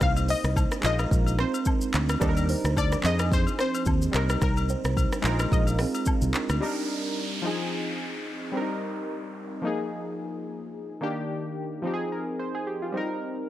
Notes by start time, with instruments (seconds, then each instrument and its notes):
Already playing: synth keys A#3 D#4 G4 C5
0.01 fingered electric bass C2, kalimba D#4 A#4, synth pluck F5, kick, cross-stick, shaker
0.17 high agogo, shaker
0.28 kalimba D#4 C5, synth pluck D#5, open hi-hat
0.44 fingered electric bass C2, cross-stick, shaker
0.56 kick, high agogo, low woodblock, shaker
0.72 kalimba D4 A#4, cross-stick, shaker
0.81 fingered electric bass A#1, synth keys G#3 D4 F4, kalimba D#4 A#4, clap, shaker
0.86 synth keys D#4 A#4, synth pluck D#5
0.99 cross-stick, high agogo, shaker
1.11 fingered electric bass A#1, kick, shaker
1.27 high agogo, shaker
1.39 kalimba C4 G#4, synth pluck C5, cross-stick
1.54 high agogo, shaker
1.65 kick, low woodblock, shaker
1.81 shaker
1.94 fingered electric bass D2, kalimba D4 A#4, clap, shaker
2.09 cross-stick, high agogo, shaker
2.20 fingered electric bass D#2, synth keys G3 D4 D#4 A4, kalimba D4 A#4, kick, cross-stick, shaker
2.29 synth keys A#4
2.37 high agogo, shaker
2.49 kalimba D#4 C5, open hi-hat
2.64 fingered electric bass D2, cross-stick, shaker
2.77 synth pluck D5, kick, high agogo, low woodblock, shaker
2.92 kalimba D4 A#4, cross-stick, shaker
3.02 fingered electric bass F2, synth keys F3 C4 D#4, kalimba D#4 A#4, clap, shaker
3.06 synth keys G#4, synth pluck D#5
3.19 cross-stick, high agogo, shaker
3.32 synth pluck C5, kick, shaker
3.47 high agogo, shaker
3.59 kalimba C4 G#4, synth pluck C5, cross-stick
3.75 high agogo, shaker
3.86 fingered electric bass D#2, kick, low woodblock, shaker
4.02 shaker
4.12 fingered electric bass C2, synth keys G3 C4 D#4, kalimba A#3 G4, synth pluck A#4, clap, shaker
4.17 synth keys A#4
4.29 cross-stick, high agogo, shaker
4.42 fingered electric bass C2, kalimba D#4 A#4, synth pluck A#4, kick, cross-stick, shaker
4.57 high agogo, shaker
4.69 kalimba D#4 C5, shaker
4.84 fingered electric bass C2, cross-stick, shaker
4.97 kick, high agogo, shaker
5.12 kalimba D4 A#4, cross-stick, shaker
5.22 fingered electric bass A#1, synth keys G#3 D#4 F4, kalimba A#4, clap, shaker
5.26 kalimba D#4, synth keys A#4
5.39 cross-stick, high agogo, shaker
5.52 fingered electric bass A#1, synth pluck D#5, kick, shaker
5.67 high agogo, shaker
5.79 kalimba C4 G#4, cross-stick, open hi-hat
5.94 high agogo, shaker
6.06 kick, low woodblock, shaker
6.22 fingered electric bass C2, shaker
6.34 kalimba D4 A#4, clap, shaker
6.49 fingered electric bass D2, cross-stick, high agogo, shaker
6.60 synth keys G3 D4 D#4 A#4, downlifter
7.42 synth keys F3 C4 D#4
7.47 synth keys G#4
8.52 synth keys G3 C4 D4
8.57 synth keys A#4
8.62 synth keys D#4
9.62 synth keys F3 A#3 D#4
9.67 synth keys G#4
11.01 synth keys D#3 A#3 D4 G4
11.82 synth keys F3 C4 D#4
11.87 synth keys G4
11.94 synth keys G#4
12.12 synth keys A#4
12.39 synth keys C5
12.55 synth keys G#4
12.67 synth keys G4
12.82 synth keys F4
12.92 synth keys G3 C4 D#4
12.97 synth keys A#4